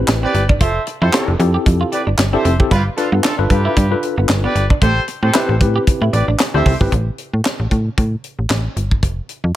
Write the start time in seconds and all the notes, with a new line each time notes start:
Already playing: C4 E4 G4 B4
0.08 A1, snare, clap, closed hi-hat
0.23 C4 G4 B4 D5
0.34 G1, muted clean electric guitar stroke, closed hi-hat
0.49 D4, kick
0.60 F1 F4 A4 C5 E5, kick, closed hi-hat
0.87 muted clean electric guitar stroke, closed hi-hat
1.02 F2 E4 G4 A4 C5
1.13 C4 E4 F4 G4 A4, snare, clap, closed hi-hat
1.28 F1
1.39 F2 C4 E4 G4 A4, muted clean electric guitar stroke, closed hi-hat
1.54 G4
1.66 F2, kick, closed hi-hat
1.81 F4
1.92 G4 B4 D5, muted clean electric guitar stroke, closed hi-hat
2.07 G1 D4
2.18 G1, muted clean electric guitar stroke, snare, clap, closed hi-hat
2.33 C4 D4 E4 G4 A4 C5 E5
2.45 F1 C4, closed hi-hat
2.59 C4 E4 G4 A4, kick
2.71 G1 G3 F4 G4 B4, kick, closed hi-hat
2.97 D4 F4 A4 B4, muted clean electric guitar stroke, closed hi-hat
3.12 G2 B3
3.24 D4 F4 A4, snare, clap, closed hi-hat
3.38 G1 D4 F4 A4 B4
3.50 G2 F4 G4 B4, muted clean electric guitar stroke, kick, closed hi-hat
3.65 E4
3.77 G2 D4, kick, closed hi-hat
3.91 D4 F4 A4 B4, muted clean electric guitar stroke
4.03 closed hi-hat
4.17 G1 B3
4.29 G1, snare, clap, closed hi-hat
4.44 B3 G4 B4 D5
4.55 G1, muted clean electric guitar stroke, closed hi-hat
4.70 D4, kick
4.82 A1 A3 G4 A4 C5, kick, closed hi-hat
5.08 muted clean electric guitar stroke, closed hi-hat
5.23 A2 C4 G4 A4 C5
5.34 C4 E4 G4 B4, snare, clap, closed hi-hat
5.49 A1
5.60 A2 C4 E4 G4 B4, muted clean electric guitar stroke, kick, closed hi-hat
5.76 G4
5.87 kick, closed hi-hat
6.01 A2 E4
6.13 A1 G4 B4 D5, muted clean electric guitar stroke, closed hi-hat
6.28 A1 D4
6.39 muted clean electric guitar stroke, snare, clap, closed hi-hat
6.54 D2 C4 D4 E4 G4 A4 C5 E5
6.66 C2 C4, kick, open hi-hat
6.80 G1 C4 E4 G4 B4, kick
6.92 A1, kick, closed hi-hat
7.18 closed hi-hat
7.33 A2
7.45 snare, clap, closed hi-hat
7.60 A1
7.71 A2, kick, closed hi-hat
7.98 A2, kick, closed hi-hat
8.24 closed hi-hat
8.39 A1
8.50 A1, snare, clap, closed hi-hat
8.76 G1, closed hi-hat
8.91 kick
9.03 F1, kick, closed hi-hat
9.29 closed hi-hat
9.44 F2